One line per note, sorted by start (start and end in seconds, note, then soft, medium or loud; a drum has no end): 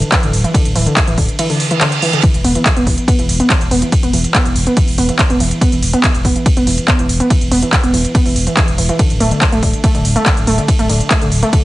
0.02 closed hi-hat medium
0.12 0.18 E3 medium
0.12 kick loud
0.12 clap loud
0.12 closed hi-hat medium
0.12 ride medium
0.23 0.33 D1 medium
0.23 0.31 D3 medium
0.23 closed hi-hat medium
0.33 0.44 D1 loud
0.33 open hi-hat loud
0.44 0.50 E3 medium
0.44 closed hi-hat soft
0.54 0.63 D3 medium
0.54 kick loud
0.54 closed hi-hat medium
0.54 ride medium
0.65 0.75 D1 medium
0.65 closed hi-hat medium
0.75 0.86 D1 loud
0.75 0.81 E3 medium
0.75 open hi-hat loud
0.86 0.95 D3 medium
0.86 closed hi-hat medium
0.97 kick loud
0.97 clap loud
0.97 closed hi-hat medium
0.97 ride medium
1.07 1.17 D1 medium
1.07 1.13 E3 medium
1.07 closed hi-hat medium
1.18 1.28 D1 loud
1.18 1.27 D3 medium
1.18 kick medium
1.18 open hi-hat loud
1.29 closed hi-hat medium
1.39 1.45 E3 medium
1.39 closed hi-hat medium
1.39 ride medium
1.39 reverse cymbal medium
1.50 1.58 D3 medium
1.50 open hi-hat medium
1.60 open hi-hat loud
1.71 1.76 E3 medium
1.71 closed hi-hat medium
1.81 1.90 D3 medium
1.81 clap loud
1.81 closed hi-hat medium
1.81 ride medium
1.92 closed hi-hat medium
2.02 2.08 E3 medium
2.02 open hi-hat loud
2.13 2.21 D3 medium
2.13 closed hi-hat medium
2.23 2.32 E3 medium
2.23 kick loud
2.23 closed hi-hat medium
2.23 ride medium
2.34 2.44 E1 medium
2.34 closed hi-hat medium
2.44 2.55 E1 loud
2.44 2.50 B3 loud
2.44 open hi-hat loud
2.55 2.64 E3 medium
2.55 closed hi-hat medium
2.66 kick loud
2.66 clap loud
2.66 closed hi-hat medium
2.66 ride medium
2.76 2.86 E1 medium
2.76 2.82 B3 loud
2.76 closed hi-hat medium
2.87 2.97 E1 loud
2.87 2.96 E3 medium
2.87 kick medium
2.87 open hi-hat loud
2.98 closed hi-hat medium
3.08 3.14 B3 loud
3.08 kick loud
3.08 closed hi-hat medium
3.08 ride medium
3.19 3.28 E1 medium
3.19 3.27 E3 medium
3.19 closed hi-hat medium
3.29 3.40 E1 medium
3.29 open hi-hat loud
3.40 3.45 B3 loud
3.40 closed hi-hat medium
3.50 3.59 E3 medium
3.50 kick loud
3.50 clap loud
3.50 closed hi-hat medium
3.50 ride medium
3.61 3.71 E1 medium
3.61 closed hi-hat medium
3.71 3.82 E1 loud
3.71 3.77 B3 loud
3.71 open hi-hat loud
3.82 3.90 E3 medium
3.82 closed hi-hat medium
3.92 kick loud
3.92 closed hi-hat medium
3.92 ride medium
4.03 4.13 E1 medium
4.03 4.09 B3 medium
4.03 closed hi-hat medium
4.13 4.24 E1 loud
4.13 4.22 E3 medium
4.13 open hi-hat loud
4.24 closed hi-hat medium
4.35 4.40 B3 loud
4.35 kick loud
4.35 clap loud
4.35 closed hi-hat medium
4.35 ride medium
4.45 4.55 E1 medium
4.45 4.54 E3 medium
4.45 closed hi-hat medium
4.56 4.66 E1 loud
4.56 open hi-hat loud
4.67 4.72 B3 loud
4.67 closed hi-hat medium
4.77 4.86 E3 medium
4.77 kick loud
4.77 closed hi-hat medium
4.77 ride medium
4.88 4.97 E1 medium
4.88 open hi-hat medium
4.98 5.09 E1 loud
4.98 5.04 B3 loud
4.98 open hi-hat loud
5.09 5.17 E3 medium
5.09 closed hi-hat medium
5.19 kick loud
5.19 clap loud
5.19 closed hi-hat medium
5.19 ride medium
5.30 5.40 E1 medium
5.30 5.36 B3 loud
5.30 closed hi-hat medium
5.40 5.51 E1 loud
5.40 5.49 E3 medium
5.40 open hi-hat loud
5.51 closed hi-hat medium
5.61 5.67 B3 loud
5.61 kick loud
5.61 closed hi-hat medium
5.61 ride medium
5.72 5.82 E1 medium
5.72 5.81 E3 medium
5.72 closed hi-hat medium
5.82 5.93 E1 loud
5.82 open hi-hat loud
5.93 5.99 B3 loud
5.93 closed hi-hat medium
6.04 6.12 E3 medium
6.04 kick loud
6.04 clap loud
6.04 closed hi-hat medium
6.04 ride medium
6.14 6.24 E1 medium
6.14 closed hi-hat medium
6.25 6.35 E1 loud
6.25 6.31 B3 loud
6.25 kick medium
6.25 open hi-hat loud
6.36 6.44 E3 medium
6.36 closed hi-hat medium
6.46 kick loud
6.46 closed hi-hat medium
6.46 ride medium
6.57 6.66 E1 medium
6.57 6.62 B3 loud
6.57 closed hi-hat medium
6.67 6.78 E1 loud
6.67 6.76 E3 medium
6.67 open hi-hat loud
6.78 closed hi-hat medium
6.88 6.94 B3 loud
6.88 kick loud
6.88 clap loud
6.88 closed hi-hat medium
6.88 ride medium
6.99 7.08 E1 medium
6.99 7.07 E3 medium
6.99 closed hi-hat medium
7.09 7.20 E1 loud
7.09 open hi-hat loud
7.20 7.26 B3 loud
7.20 closed hi-hat medium
7.30 7.39 E3 medium
7.30 kick loud
7.30 closed hi-hat medium
7.30 ride medium
7.41 7.51 E1 medium
7.41 closed hi-hat medium
7.51 7.62 E1 loud
7.51 7.57 B3 loud
7.51 open hi-hat loud
7.62 7.71 E3 medium
7.62 closed hi-hat medium
7.73 kick loud
7.73 clap loud
7.73 closed hi-hat medium
7.73 ride medium
7.83 7.93 E1 medium
7.83 7.89 B3 loud
7.83 closed hi-hat medium
7.94 8.04 E1 loud
7.94 8.03 E3 medium
7.94 open hi-hat loud
8.05 closed hi-hat medium
8.15 8.21 B3 loud
8.15 kick loud
8.15 closed hi-hat medium
8.15 ride medium
8.26 8.35 E1 medium
8.26 8.34 E3 medium
8.26 open hi-hat medium
8.36 8.47 E1 loud
8.36 open hi-hat loud
8.47 8.52 E3 medium
8.47 closed hi-hat medium
8.57 8.63 E3 loud
8.57 kick loud
8.57 clap loud
8.57 closed hi-hat medium
8.57 ride medium
8.68 8.78 E1 medium
8.68 closed hi-hat medium
8.78 8.89 E1 loud
8.78 8.82 E3 medium
8.78 open hi-hat loud
8.89 8.95 E3 loud
8.89 closed hi-hat medium
8.99 9.08 D3 medium
8.99 kick loud
8.99 closed hi-hat medium
8.99 ride medium
9.10 9.20 D1 medium
9.10 closed hi-hat soft
9.20 9.31 D1 loud
9.20 9.26 A3 loud
9.20 open hi-hat loud
9.31 9.40 D3 medium
9.31 closed hi-hat medium
9.42 kick loud
9.42 clap loud
9.42 closed hi-hat medium
9.42 ride medium
9.52 9.62 D1 medium
9.52 9.58 A3 loud
9.52 closed hi-hat medium
9.63 9.73 D1 loud
9.63 9.72 D3 medium
9.63 kick medium
9.63 open hi-hat loud
9.73 closed hi-hat soft
9.84 9.90 A3 loud
9.84 kick loud
9.84 closed hi-hat medium
9.84 ride medium
9.95 10.04 D1 medium
9.95 10.03 D3 medium
9.95 closed hi-hat soft
10.05 10.16 D1 loud
10.05 open hi-hat loud
10.16 10.21 A3 loud
10.16 closed hi-hat medium
10.26 10.35 D3 medium
10.26 kick loud
10.26 clap loud
10.26 closed hi-hat medium
10.26 ride medium
10.37 10.47 D1 medium
10.37 closed hi-hat medium
10.47 10.58 D1 medium
10.47 10.53 A3 loud
10.47 open hi-hat loud
10.58 10.66 D3 medium
10.58 closed hi-hat medium
10.68 kick loud
10.68 closed hi-hat medium
10.68 ride medium
10.79 10.89 D1 medium
10.79 10.85 A3 loud
10.79 closed hi-hat soft
10.89 11.00 D1 loud
10.89 10.98 D3 medium
10.89 open hi-hat loud
11.00 closed hi-hat medium
11.11 11.16 A3 loud
11.11 kick loud
11.11 clap loud
11.11 closed hi-hat medium
11.11 ride medium
11.21 11.31 D1 medium
11.21 11.30 D3 medium
11.21 closed hi-hat soft
11.32 11.42 D1 loud
11.32 open hi-hat loud
11.43 11.48 A3 loud
11.43 closed hi-hat medium
11.53 11.62 D3 medium
11.53 kick loud
11.53 closed hi-hat medium
11.53 ride medium